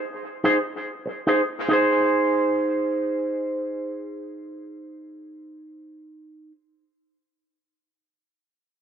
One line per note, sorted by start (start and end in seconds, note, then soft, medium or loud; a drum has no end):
0.44 0.57 D#4 medium
0.44 0.57 G#4 medium
0.44 0.58 C5 medium
1.06 muted clean electric guitar stroke soft
1.27 1.40 D#4 medium
1.27 1.41 G#4 medium
1.27 1.41 C5 medium
1.69 6.51 D#4 medium
1.69 6.54 G#4 medium
1.73 6.55 C5 medium